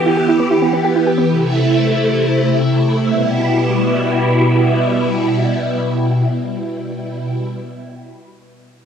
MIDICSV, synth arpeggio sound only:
0, 0, Header, 1, 2, 480
1, 0, Start_track
1, 0, Key_signature, 1, "minor"
1, 0, Tempo, 500000
1, 8497, End_track
2, 0, Start_track
2, 0, Title_t, "Synth arpeggio sound"
2, 0, Program_c, 0, 84
2, 57, Note_on_c, 0, 64, 73
2, 120, Note_off_c, 0, 64, 0
2, 164, Note_on_c, 0, 67, 82
2, 227, Note_off_c, 0, 67, 0
2, 272, Note_on_c, 0, 64, 76
2, 335, Note_off_c, 0, 64, 0
2, 379, Note_on_c, 0, 59, 86
2, 442, Note_off_c, 0, 59, 0
2, 486, Note_on_c, 0, 64, 73
2, 550, Note_off_c, 0, 64, 0
2, 594, Note_on_c, 0, 59, 75
2, 657, Note_off_c, 0, 59, 0
2, 701, Note_on_c, 0, 59, 74
2, 765, Note_off_c, 0, 59, 0
2, 809, Note_on_c, 0, 67, 85
2, 872, Note_off_c, 0, 67, 0
2, 916, Note_on_c, 0, 64, 72
2, 979, Note_off_c, 0, 64, 0
2, 1024, Note_on_c, 0, 67, 79
2, 1087, Note_off_c, 0, 67, 0
2, 1131, Note_on_c, 0, 59, 70
2, 1194, Note_off_c, 0, 59, 0
2, 8497, End_track
0, 0, End_of_file